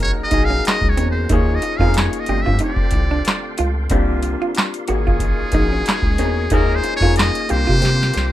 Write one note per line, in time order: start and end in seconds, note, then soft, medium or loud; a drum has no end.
0.00 0.13 G#1 loud
0.00 0.94 F#3 medium
0.00 0.29 A#3 medium
0.00 0.29 C#4 medium
0.00 1.28 C#4 medium
0.00 0.29 D#4 medium
0.00 0.94 D#4 medium
0.00 0.29 F#4 medium
0.00 0.30 G#4 medium
0.00 1.28 G#4 medium
0.00 0.94 A#4 medium
0.00 0.11 C#5 loud
0.00 1.28 F#5 medium
0.00 1.28 A#5 medium
0.19 0.25 A#1 soft
0.24 0.47 D#5 loud
0.31 0.61 A#1 medium
0.31 0.94 A#3 medium
0.31 0.94 C#4 medium
0.31 0.42 D#4 medium
0.31 0.94 D#4 medium
0.31 0.95 F#4 medium
0.31 0.95 G#4 medium
0.31 kick loud
0.31 closed hi-hat medium
0.45 0.65 F5 loud
0.50 0.59 C#4 medium
0.65 0.91 D#5 loud
0.65 snare loud
0.65 clap medium
0.65 closed hi-hat medium
0.81 1.00 C#2 medium
0.81 kick loud
0.89 1.09 C#5 medium
0.97 1.27 E2 loud
0.97 1.29 A#3 medium
0.97 1.08 C4 medium
0.97 1.29 C#4 medium
0.97 1.29 D#4 medium
0.97 1.29 F#4 medium
0.97 1.29 A#4 medium
0.97 closed hi-hat medium
1.11 1.35 C5 medium
1.29 1.59 D#2 loud
1.29 1.93 F3 medium
1.29 1.78 A#3 loud
1.29 1.93 C#4 medium
1.29 1.78 C#4 medium
1.29 1.40 D#4 medium
1.29 1.78 D#4 loud
1.29 1.79 F4 medium
1.29 1.94 G#4 medium
1.29 2.26 G#4 medium
1.29 1.79 G#4 loud
1.29 2.27 D#5 medium
1.29 4.85 F5 medium
1.29 2.26 C#6 medium
1.29 kick loud
1.29 closed hi-hat medium
1.34 1.57 C#5 medium
1.55 1.79 D#5 loud
1.62 muted hollow-body jazz guitar stroke soft
1.62 closed hi-hat medium
1.77 2.09 F2 loud
1.77 2.25 A#3 medium
1.77 2.26 C#4 medium
1.77 2.26 D#4 medium
1.77 1.89 F4 medium
1.77 1.97 F5 loud
1.77 kick loud
1.82 2.26 F4 medium
1.82 1.87 G#4 medium
1.89 2.29 A#4 medium
1.94 muted hollow-body jazz guitar stroke soft
1.94 snare loud
1.94 clap medium
1.94 closed hi-hat medium
1.98 2.21 C#5 medium
2.13 closed hi-hat medium
2.20 2.44 D#5 loud
2.26 2.44 G1 loud
2.26 3.55 D3 medium
2.26 3.52 A3 medium
2.26 3.55 C4 medium
2.26 3.52 C4 medium
2.26 3.52 D4 medium
2.26 3.53 F4 medium
2.26 3.55 G4 medium
2.26 2.39 G4 medium
2.26 3.53 G4 medium
2.26 3.89 A4 medium
2.26 3.89 G5 medium
2.26 4.86 C6 medium
2.26 closed hi-hat medium
2.42 2.62 E5 loud
2.46 2.60 G2 medium
2.46 2.54 F4 medium
2.46 kick medium
2.59 2.71 D#4 medium
2.59 closed hi-hat medium
2.64 3.56 D5 medium
2.76 kick loud
2.91 3.22 C2 loud
2.91 muted hollow-body jazz guitar stroke soft
2.91 kick medium
2.91 closed hi-hat medium
3.11 3.19 D4 medium
3.25 snare loud
3.25 clap medium
3.25 closed hi-hat medium
3.58 3.88 C#2 loud
3.58 3.69 F4 medium
3.58 closed hi-hat medium
3.90 4.36 C2 loud
3.90 4.54 D3 medium
3.90 4.54 A#3 medium
3.90 4.84 A#3 loud
3.90 4.84 C4 loud
3.90 4.01 C4 medium
3.90 4.84 D4 loud
3.90 4.54 F4 medium
3.90 4.84 F4 loud
3.90 4.84 G4 loud
3.90 6.48 A#4 medium
3.90 4.87 D5 medium
3.90 kick loud
3.90 closed hi-hat medium
4.23 muted hollow-body jazz guitar stroke soft
4.23 closed hi-hat medium
4.42 4.50 F4 medium
4.55 muted hollow-body jazz guitar stroke soft
4.55 snare loud
4.55 clap medium
4.55 closed hi-hat medium
4.74 closed hi-hat medium
4.88 5.34 G#1 loud
4.88 6.16 C#3 medium
4.88 6.16 A#3 medium
4.88 5.50 A#3 medium
4.88 5.50 C#4 medium
4.88 5.51 D#4 medium
4.88 6.16 F4 medium
4.88 4.99 F#4 medium
4.88 5.51 F#4 medium
4.88 5.51 G#4 medium
4.88 6.55 G#4 loud
4.88 6.49 D#5 medium
4.88 6.50 G#5 medium
4.88 6.50 C#6 medium
4.88 closed hi-hat medium
5.07 5.15 F4 medium
5.07 kick loud
5.20 muted hollow-body jazz guitar stroke soft
5.20 kick medium
5.20 closed hi-hat medium
5.40 5.45 A#1 soft
5.52 5.83 A#1 medium
5.52 6.15 A#3 medium
5.52 6.15 C#4 medium
5.52 6.15 D#4 medium
5.52 5.65 D#4 medium
5.52 6.16 F#4 medium
5.52 6.16 G#4 medium
5.52 kick loud
5.52 closed hi-hat medium
5.72 5.81 C#4 medium
5.86 snare loud
5.86 clap medium
5.86 closed hi-hat medium
6.02 6.22 C#2 loud
6.02 kick loud
6.18 6.48 E2 medium
6.18 6.50 A#3 medium
6.18 6.30 C4 medium
6.18 6.50 C#4 medium
6.18 6.50 D#4 medium
6.18 6.50 F#4 medium
6.18 6.51 G#4 medium
6.18 closed hi-hat medium
6.50 6.81 D#2 loud
6.50 7.15 A#2 medium
6.50 7.15 G#3 medium
6.50 6.99 A#3 loud
6.50 6.99 C#4 medium
6.50 7.15 D#4 medium
6.50 6.62 D#4 medium
6.50 7.00 D#4 medium
6.50 7.00 F4 medium
6.50 7.00 G#4 loud
6.50 6.77 A#4 medium
6.50 7.48 C#5 medium
6.50 8.32 F5 medium
6.50 7.48 G#5 medium
6.50 7.48 D#6 medium
6.50 kick loud
6.50 closed hi-hat medium
6.75 6.96 C5 loud
6.84 muted hollow-body jazz guitar stroke soft
6.84 closed hi-hat medium
6.96 7.16 C#5 loud
7.01 7.31 F2 loud
7.01 7.47 A#3 medium
7.01 7.47 C#4 medium
7.01 7.47 D#4 medium
7.01 7.11 F4 medium
7.01 7.48 F4 medium
7.01 7.48 G#4 medium
7.01 kick medium
7.16 7.52 D#5 loud
7.16 muted hollow-body jazz guitar stroke soft
7.16 snare loud
7.16 clap medium
7.16 closed hi-hat medium
7.35 closed hi-hat medium
7.48 7.66 C2 loud
7.48 8.32 D3 medium
7.48 8.32 A#3 medium
7.48 8.32 C4 medium
7.48 8.32 D4 medium
7.48 8.32 F4 medium
7.48 8.32 G4 medium
7.48 7.60 G4 medium
7.48 8.32 G4 medium
7.48 8.32 C5 medium
7.48 8.32 C5 loud
7.48 8.32 A#5 medium
7.48 8.32 D6 medium
7.48 closed hi-hat medium
7.67 7.82 C3 loud
7.67 7.76 F4 medium
7.67 kick loud
7.82 8.12 C3 loud
7.82 7.92 C4 medium
7.82 snare medium
7.82 closed hi-hat medium
8.03 snare medium
8.14 8.32 C2 medium
8.14 muted hollow-body jazz guitar stroke soft
8.14 snare medium
8.14 closed hi-hat medium